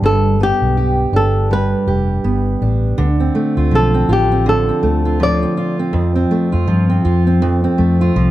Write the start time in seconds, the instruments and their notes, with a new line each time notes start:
Already playing: steel-string acoustic guitar G3 G4
0.02 fingered electric bass G1, steel-string acoustic guitar G2, nylon-string guitar A4
0.40 steel-string acoustic guitar B3, nylon-string guitar G4
0.62 fingered electric bass B1
0.77 steel-string acoustic guitar G4
1.12 fingered electric bass G1, steel-string acoustic guitar D4, nylon-string guitar A4
1.51 steel-string acoustic guitar G3, nylon-string guitar B4
1.87 fingered electric bass F1, steel-string acoustic guitar G4
2.24 fingered electric bass G1, steel-string acoustic guitar B3
2.61 fingered electric bass A1, steel-string acoustic guitar D4
2.98 fingered electric bass D2, steel-string acoustic guitar D3
3.20 steel-string acoustic guitar C4
3.35 steel-string acoustic guitar A3
3.57 fingered electric bass D2, steel-string acoustic guitar F4
3.71 fingered electric bass B1, steel-string acoustic guitar F3
3.75 nylon-string guitar A4
3.94 steel-string acoustic guitar C4
4.08 fingered electric bass A1, steel-string acoustic guitar F4
4.13 nylon-string guitar G4
4.32 steel-string acoustic guitar C4
4.46 steel-string acoustic guitar D3, nylon-string guitar A4
4.69 steel-string acoustic guitar C4
4.83 fingered electric bass D2, steel-string acoustic guitar A3
5.05 steel-string acoustic guitar F4
5.20 steel-string acoustic guitar F3, nylon-string guitar D5
5.43 steel-string acoustic guitar C4
5.57 steel-string acoustic guitar F4
5.79 steel-string acoustic guitar C4
5.93 steel-string acoustic guitar F2, fingered electric bass F2
6.15 steel-string acoustic guitar C4
6.31 steel-string acoustic guitar A3
6.52 fingered electric bass F2, steel-string acoustic guitar F4
6.68 fingered electric bass G2, steel-string acoustic guitar F3
6.90 steel-string acoustic guitar C4
7.05 fingered electric bass F2, steel-string acoustic guitar F4
7.27 steel-string acoustic guitar C4
7.42 steel-string acoustic guitar F2
7.64 steel-string acoustic guitar C4
7.78 fingered electric bass F2, steel-string acoustic guitar A3
8.01 steel-string acoustic guitar F4
8.16 fingered electric bass C2, steel-string acoustic guitar F3